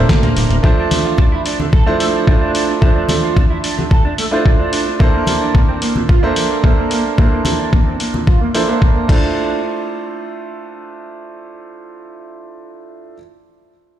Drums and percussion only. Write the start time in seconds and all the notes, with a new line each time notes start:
0.09 kick, snare, closed hi-hat
0.23 closed hi-hat, low conga
0.37 open hi-hat
0.51 closed hi-hat
0.64 kick
0.91 open hi-hat, high conga
1.18 kick, high conga
1.46 open hi-hat
1.60 high conga
1.73 kick
2.00 open hi-hat
2.27 kick
2.55 open hi-hat
2.82 kick
3.09 open hi-hat, high conga
3.37 kick, high conga
3.64 open hi-hat
3.79 high conga
3.91 kick
4.18 open hi-hat
4.46 kick
4.73 open hi-hat
5.00 kick
5.27 open hi-hat, high conga
5.55 kick, high conga
5.82 open hi-hat
5.96 high conga
6.09 kick
6.36 open hi-hat
6.64 kick
6.91 open hi-hat
7.18 kick
7.45 open hi-hat, high conga
7.73 kick, high conga
8.00 open hi-hat
8.14 high conga
8.27 kick
8.55 open hi-hat
8.82 kick
9.09 kick, crash